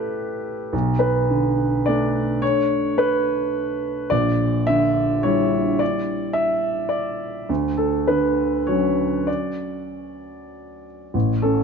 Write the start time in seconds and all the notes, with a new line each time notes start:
Already playing: A3 E4 G4 A4 B4
0.73 B1
0.99 B4
1.30 D3
1.86 A3 D4 D5
2.42 C#5
2.98 B4
4.10 A#1 D5
4.67 D3 E5
5.23 G3 E4 C#5
5.79 D5
6.33 E5
6.89 D5
7.49 D2
7.77 A4
8.07 D3 B4
8.67 F#3 C#4 C#5
9.27 D5
11.14 A1
11.42 C#4 A4